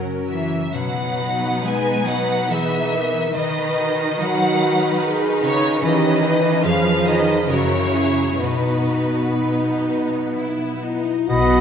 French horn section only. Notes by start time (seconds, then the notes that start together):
Already playing: A#4
1.64 B4
2.50 G#4
2.94 A#4
3.36 B4
4.22 F#4
5.05 G#4
5.85 G4
6.22 B4
6.63 G#4
7.51 F#4
7.94 E4
8.42 D#4
10.83 E4
11.27 F#4